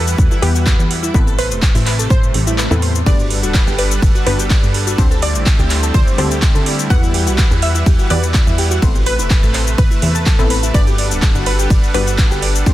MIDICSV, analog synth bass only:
0, 0, Header, 1, 2, 480
1, 0, Start_track
1, 0, Key_signature, 1, "major"
1, 0, Tempo, 480000
1, 1144, Time_signature, 4, 2, 24, 8
1, 12736, End_track
2, 0, Start_track
2, 0, Title_t, "Analog synth bass"
2, 0, Program_c, 0, 38
2, 0, Note_on_c, 0, 40, 102
2, 154, Note_off_c, 0, 40, 0
2, 184, Note_on_c, 0, 40, 92
2, 289, Note_off_c, 0, 40, 0
2, 424, Note_on_c, 0, 40, 98
2, 757, Note_off_c, 0, 40, 0
2, 788, Note_on_c, 0, 40, 81
2, 1114, Note_off_c, 0, 40, 0
2, 1144, Note_on_c, 0, 33, 99
2, 1509, Note_on_c, 0, 28, 93
2, 1524, Note_off_c, 0, 33, 0
2, 1709, Note_off_c, 0, 28, 0
2, 1749, Note_on_c, 0, 33, 108
2, 2074, Note_off_c, 0, 33, 0
2, 2104, Note_on_c, 0, 33, 98
2, 2307, Note_off_c, 0, 33, 0
2, 2345, Note_on_c, 0, 33, 96
2, 2677, Note_off_c, 0, 33, 0
2, 2710, Note_on_c, 0, 40, 101
2, 3035, Note_off_c, 0, 40, 0
2, 3064, Note_on_c, 0, 31, 105
2, 3430, Note_on_c, 0, 26, 93
2, 3445, Note_off_c, 0, 31, 0
2, 3629, Note_off_c, 0, 26, 0
2, 3670, Note_on_c, 0, 31, 106
2, 3995, Note_off_c, 0, 31, 0
2, 4025, Note_on_c, 0, 31, 97
2, 4129, Note_off_c, 0, 31, 0
2, 4265, Note_on_c, 0, 31, 100
2, 4597, Note_off_c, 0, 31, 0
2, 4630, Note_on_c, 0, 31, 83
2, 4955, Note_off_c, 0, 31, 0
2, 4984, Note_on_c, 0, 38, 101
2, 5349, Note_on_c, 0, 33, 91
2, 5364, Note_off_c, 0, 38, 0
2, 5549, Note_off_c, 0, 33, 0
2, 5589, Note_on_c, 0, 38, 98
2, 5915, Note_off_c, 0, 38, 0
2, 5944, Note_on_c, 0, 38, 93
2, 6049, Note_off_c, 0, 38, 0
2, 6183, Note_on_c, 0, 38, 100
2, 6517, Note_off_c, 0, 38, 0
2, 6548, Note_on_c, 0, 38, 81
2, 6874, Note_off_c, 0, 38, 0
2, 6903, Note_on_c, 0, 40, 103
2, 7269, Note_on_c, 0, 35, 94
2, 7284, Note_off_c, 0, 40, 0
2, 7469, Note_off_c, 0, 35, 0
2, 7509, Note_on_c, 0, 40, 104
2, 7834, Note_off_c, 0, 40, 0
2, 7863, Note_on_c, 0, 40, 98
2, 7968, Note_off_c, 0, 40, 0
2, 8104, Note_on_c, 0, 40, 102
2, 8437, Note_off_c, 0, 40, 0
2, 8468, Note_on_c, 0, 40, 84
2, 8794, Note_off_c, 0, 40, 0
2, 8824, Note_on_c, 0, 33, 103
2, 9189, Note_on_c, 0, 28, 96
2, 9204, Note_off_c, 0, 33, 0
2, 9389, Note_off_c, 0, 28, 0
2, 9428, Note_on_c, 0, 33, 105
2, 9754, Note_off_c, 0, 33, 0
2, 9784, Note_on_c, 0, 33, 93
2, 9889, Note_off_c, 0, 33, 0
2, 10024, Note_on_c, 0, 40, 97
2, 10357, Note_off_c, 0, 40, 0
2, 10389, Note_on_c, 0, 33, 90
2, 10714, Note_off_c, 0, 33, 0
2, 10743, Note_on_c, 0, 31, 100
2, 11108, Note_on_c, 0, 26, 96
2, 11123, Note_off_c, 0, 31, 0
2, 11308, Note_off_c, 0, 26, 0
2, 11348, Note_on_c, 0, 31, 104
2, 11674, Note_off_c, 0, 31, 0
2, 11704, Note_on_c, 0, 31, 93
2, 11809, Note_off_c, 0, 31, 0
2, 11944, Note_on_c, 0, 31, 97
2, 12277, Note_off_c, 0, 31, 0
2, 12309, Note_on_c, 0, 31, 83
2, 12635, Note_off_c, 0, 31, 0
2, 12664, Note_on_c, 0, 38, 97
2, 12736, Note_off_c, 0, 38, 0
2, 12736, End_track
0, 0, End_of_file